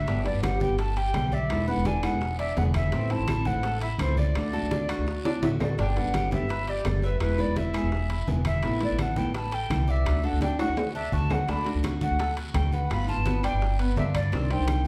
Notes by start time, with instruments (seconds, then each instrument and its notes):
Already playing: flute E5
0.07 upright bass G1, nylon-string guitar D3 G3 B3 G4, cuban tres D4, high bongo, high timbale, long guiro
0.24 nylon-string guitar G3 B3 G4, flute D5, high bongo, high conga, high timbale
0.34 upright bass G1
0.43 cuban tres G4, flute F#5, high bongo, high conga, high timbale, short guiro, claves
0.60 nylon-string guitar G3 B3 G4, flute G5, high conga, short guiro
0.70 upright bass G1
0.78 cuban tres A4, flute A5, muted nylon-string guitar stroke, high bongo, high conga, high timbale, long guiro
0.97 cuban tres G4, flute G5, high conga, high timbale
1.13 upright bass B1, nylon-string guitar D3 G3 B3 G4, high bongo, low bongo, high conga, high timbale, low timbale, short guiro, claves
1.32 cuban tres D5, flute E5, high bongo, high conga, short guiro
1.49 upright bass E1, nylon-string guitar B2 D3 G#3 B3 E4, high bongo, high conga, high timbale, long guiro, claves
1.67 nylon-string guitar D3 G#3 B3 E4, cuban tres B4, flute F#5, high bongo, high conga
1.77 upright bass E1
1.85 cuban tres D4, flute G#5, high bongo, high conga, high timbale, short guiro
2.03 nylon-string guitar D3 G#3 B3 E4, cuban tres G#4, flute F#5, high bongo, high timbale, short guiro, claves
2.12 upright bass E1
2.21 muted nylon-string guitar stroke, high bongo, high conga, long guiro
2.39 cuban tres D4, flute E5, high conga, high timbale
2.56 upright bass E1, nylon-string guitar D3 G#3 B3 E4, cuban tres G#4, flute F#5, high bongo, low bongo, high conga, low timbale, short guiro
2.74 flute E5, high bongo, high conga, high timbale, short guiro, claves
2.92 upright bass A1, nylon-string guitar E3 A3 C4 E4, cuban tres C4, high bongo, high timbale, long guiro
3.10 nylon-string guitar A3 C4 E4, flute A5, high bongo, high conga, high timbale
3.19 upright bass A1
3.28 cuban tres E4, high bongo, high conga, high timbale, short guiro, claves
3.45 nylon-string guitar A3 C4 E4, flute F#5, high bongo, high conga, short guiro
3.55 upright bass A1
3.63 cuban tres A4, muted nylon-string guitar stroke, high bongo, high conga, high timbale, long guiro
3.81 cuban tres E4, flute E5, high conga, high timbale
3.99 upright bass C#2, nylon-string guitar E3 A3 C4 E4, flute C5, high bongo, low bongo, high conga, high timbale, short guiro, claves
4.17 cuban tres D5, flute D5, high bongo, high conga, short guiro
4.35 upright bass D2, nylon-string guitar D3 A3 D4 F#4, high bongo, high timbale, long guiro, claves
4.53 nylon-string guitar A3 D4 F#4, cuban tres A4, high bongo, high conga
4.62 upright bass D2
4.71 cuban tres D4, high bongo, high conga, high timbale, short guiro
4.88 nylon-string guitar A3 D4 F#4, cuban tres F#4, high bongo, high timbale, short guiro, claves
4.98 upright bass D2
5.07 muted nylon-string guitar stroke, high bongo, high conga, long guiro
5.25 cuban tres D4, high bongo, high conga, high timbale
5.42 upright bass A1, nylon-string guitar D3 A3 D4 F#4, cuban tres F#4, flute E5, high bongo, high conga, high timbale, short guiro
5.60 flute D5, low bongo, high conga, low timbale, short guiro, claves
5.78 upright bass G1, nylon-string guitar B2 D3 G3 B3 G4, cuban tres D4, flute G5, high bongo, high timbale, long guiro
5.96 nylon-string guitar D3 G3 B3 G4, flute F#5, high bongo, high conga, high timbale
6.05 upright bass G1
6.14 cuban tres G4, high bongo, high conga, high timbale, short guiro, claves
6.31 nylon-string guitar D3 G3 B3 G4, flute E5, high bongo, high conga, short guiro
6.40 upright bass G1
6.49 cuban tres B4, muted nylon-string guitar stroke, high bongo, high conga, high timbale, long guiro
6.68 cuban tres G4, flute D5, high conga, high timbale
6.84 upright bass F#1, nylon-string guitar D3 G3 B3 G4, flute D5, high bongo, low bongo, high conga, high timbale, low timbale, short guiro, claves
7.02 flute B4, cuban tres E5, high bongo, short guiro
7.20 upright bass E1, nylon-string guitar B2 E3 G#3 B3 E4, flute B4, high bongo, high conga, high timbale, long guiro, claves
7.38 nylon-string guitar E3 G#3 B3 E4, cuban tres B4, flute D5, high bongo, high conga
7.47 upright bass E1
7.56 cuban tres E4, flute E5, high bongo, high conga, high timbale, short guiro
7.74 nylon-string guitar E3 G#3 B3 E4, cuban tres G#4, high bongo, high timbale, short guiro, claves
7.83 upright bass E1
7.92 muted nylon-string guitar stroke, high bongo, high conga, long guiro
8.09 cuban tres E4, high conga, high timbale
8.27 upright bass E1, nylon-string guitar E3 G#3 B3 E4, cuban tres G#4, high bongo, low bongo, high conga, short guiro
8.45 flute E5, high bongo, high conga, high timbale, short guiro, claves
8.63 upright bass A1, nylon-string guitar C3 E3 A3 B3 E4, cuban tres E4, high bongo, high conga, high timbale, long guiro
8.80 nylon-string guitar E3 A3 B3 E4, flute D5, high bongo, high conga, high timbale
8.90 upright bass A1
8.99 cuban tres A4, flute F#5, high bongo, high conga, high timbale, short guiro, claves
9.16 nylon-string guitar E3 A3 B3 E4, flute G5, high bongo, high conga, short guiro
9.26 upright bass A1
9.34 cuban tres B4, flute A5, muted nylon-string guitar stroke, high bongo, high conga, high timbale, long guiro
9.52 cuban tres A4, flute G5, high conga, high timbale
9.70 upright bass C2, nylon-string guitar E3 A3 B3 E4, high bongo, low bongo, high conga, high timbale, short guiro, claves
9.88 cuban tres D5, flute E5, high bongo, short guiro
10.05 upright bass D2, nylon-string guitar D3 A3 D4 F#4, high bongo, high conga, high timbale, long guiro, claves
10.23 nylon-string guitar A3 D4 F#4, cuban tres A4, flute F#5, high bongo, high conga
10.32 upright bass D2
10.41 cuban tres D4, flute G5, high bongo, high conga, high timbale, short guiro
10.59 nylon-string guitar A3 D4 F#4, cuban tres F#4, flute F#5, high timbale, short guiro, claves
10.68 upright bass D2
10.76 muted nylon-string guitar stroke, high conga, low timbale, long guiro
10.95 cuban tres D4, flute E5, high conga
11.12 upright bass D2, nylon-string guitar D3 A3 D4 F#4, cuban tres F#4, flute A5, high conga, short guiro
11.30 flute F#5, low bongo, high conga, low timbale, short guiro, claves
11.48 upright bass D2, nylon-string guitar D3 A3 D4 F#4, cuban tres D4, flute B5, high bongo, high timbale, long guiro
11.65 nylon-string guitar A3 D4 F#4, high bongo, high conga, high timbale
11.74 upright bass D2
11.83 cuban tres F#4, high bongo, high conga, high timbale, short guiro, claves
12.01 nylon-string guitar A3 D4 F#4, flute F#5, high bongo, high conga, short guiro
12.11 upright bass D2
12.19 cuban tres A4, muted nylon-string guitar stroke, high bongo, high conga, high timbale, long guiro
12.37 cuban tres F#4, high conga, high timbale
12.54 upright bass D2, nylon-string guitar D3 A3 D4 F#4, flute G5, high bongo, low bongo, high conga, high timbale, low timbale, short guiro, claves
12.72 cuban tres B4, flute F#5, high bongo, high conga, short guiro
12.90 upright bass G1, nylon-string guitar G3 B3 F4, flute B5, high bongo, high timbale, long guiro, claves
13.07 nylon-string guitar B3 F4, cuban tres F4, flute A5, high bongo, high conga
13.17 upright bass G1
13.25 cuban tres B3, high bongo, high conga, high timbale, short guiro
13.43 nylon-string guitar B3 F4, cuban tres D4, flute G5, high bongo, high timbale, short guiro, claves
13.53 upright bass G1
13.61 muted nylon-string guitar stroke, high bongo, high conga, long guiro
13.79 cuban tres B3, high conga, high timbale
13.96 upright bass G2, nylon-string guitar G3 B3 F4, cuban tres D4, flute E5, high bongo, low bongo, high conga, low timbale, short guiro
14.15 flute D5, high bongo, high conga, high timbale, short guiro, claves
14.32 upright bass C2, nylon-string guitar C3 D#3 G3 D4 G4, cuban tres C4, high bongo, high conga, high timbale, long guiro
14.50 nylon-string guitar D#3 G3 D4 G4, flute G5, high bongo, high conga, high timbale
14.59 upright bass C2
14.67 high bongo, high conga, high timbale, short guiro, claves